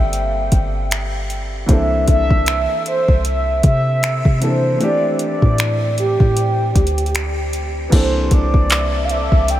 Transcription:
Already playing: 808-style bass G1, grand piano G3 A#3 C4 F4 A4, soft synth lead E5
0.13 closed hi-hat
0.52 808-style bass G1, kick, closed hi-hat
0.91 finger snap, closed hi-hat
1.30 closed hi-hat
1.66 808-style bass C2, grand piano E3 A#3 C4, kick, closed hi-hat
1.70 grand piano D4 A4, soft synth lead E5
2.08 808-style bass C2, soft synth lead E5, kick, closed hi-hat
2.30 kick
2.46 finger snap, closed hi-hat
2.86 soft synth lead C5, closed hi-hat
3.08 808-style bass C2, kick
3.25 soft synth lead E5, closed hi-hat
3.63 808-style bass C3, soft synth lead E5, kick, closed hi-hat
4.03 finger snap, closed hi-hat
4.25 808-style bass C3, kick
4.40 grand piano E3 A#3 C4 D4 A4, soft synth lead C5, closed hi-hat
4.78 grand piano E3 A3 C4, closed hi-hat
4.82 grand piano D4 G4, soft synth lead D5
5.19 soft synth lead D5, closed hi-hat
5.42 808-style bass A2, kick
5.58 finger snap, closed hi-hat
5.98 soft synth lead G4, closed hi-hat
6.20 808-style bass A2, kick
6.37 closed hi-hat
6.75 808-style bass D2, kick, closed hi-hat
6.87 closed hi-hat
6.98 closed hi-hat
7.06 closed hi-hat
7.15 finger snap, closed hi-hat
7.53 closed hi-hat
7.88 grand piano E3 A#3, soft synth lead B4
7.92 808-style bass C2, grand piano C4 D4 A4, ambient pad C5 E5 A5 D6, soft synth lead C5, kick, closed hi-hat, crash
8.31 808-style bass C2, soft synth lead D5, kick, closed hi-hat
8.54 808-style bass C2, kick
8.70 clap, closed hi-hat
9.05 soft synth lead F5
9.09 soft synth lead E5, closed hi-hat
9.32 808-style bass C2, kick
9.48 soft synth lead G5, closed hi-hat

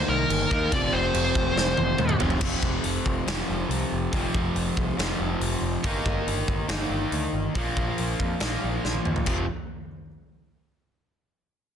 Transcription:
Already playing: overdriven electric guitar D#3 A#3 D#4
0.08 picked electric bass C2, lead electric guitar A#4
0.29 picked electric bass G1, crash
0.51 picked electric bass D#2, overdriven electric guitar D#3 A#3 D#4, kick
0.72 picked electric bass F1, overdriven electric guitar F2 C3 F3, lead electric guitar D5, kick, crash
0.93 picked electric bass F1, lead electric guitar C5
1.14 picked electric bass F1, crash
1.35 picked electric bass F1, kick
1.56 picked electric bass F1, snare
1.77 picked electric bass F1, high tom
1.98 picked electric bass D#2, mid tom
2.09 mid tom
2.19 picked electric bass F1, overdriven electric guitar F2 C3 F3, floor tom
2.30 floor tom
2.41 picked electric bass F1, overdriven electric guitar F2 C3 F3, kick, crash
2.63 picked electric bass F1, kick
2.84 picked electric bass F1, open hi-hat
3.06 picked electric bass F1, kick
3.27 picked electric bass F1, overdriven electric guitar F2 C3 F3, snare, open hi-hat
3.49 picked electric bass F1
3.69 picked electric bass C2, open hi-hat
3.92 picked electric bass F1
4.12 picked electric bass F1, overdriven electric guitar F2 C3 F3, kick, open hi-hat
4.34 picked electric bass F1, kick
4.55 picked electric bass F1, open hi-hat
4.77 picked electric bass C2, kick
4.97 picked electric bass F1, overdriven electric guitar F2 C3 F3, snare, open hi-hat
5.19 picked electric bass F1
5.40 picked electric bass F1, open hi-hat
5.61 picked electric bass F1
5.84 picked electric bass G1, overdriven electric guitar D#3 A#3 D#4, kick, open hi-hat
6.06 picked electric bass G1, kick
6.27 picked electric bass G1, open hi-hat
6.48 picked electric bass G1, kick
6.68 picked electric bass G1, overdriven electric guitar D#3 A#3 D#4, snare, open hi-hat
6.90 picked electric bass G1
7.12 picked electric bass D2, open hi-hat
7.33 picked electric bass G1
7.55 picked electric bass A#1, overdriven electric guitar A#2 F3 A#3, kick, open hi-hat
7.76 picked electric bass A#1, kick
7.98 picked electric bass A#1, open hi-hat
8.19 picked electric bass F2, kick
8.40 picked electric bass A#1, overdriven electric guitar A#2 F3 A#3, snare, open hi-hat
8.64 picked electric bass A#1
8.84 picked electric bass A#1, snare
8.95 high tom
9.05 picked electric bass D#2, mid tom
9.16 floor tom
9.26 picked electric bass F1, overdriven electric guitar F2 C3 F3, kick, crash

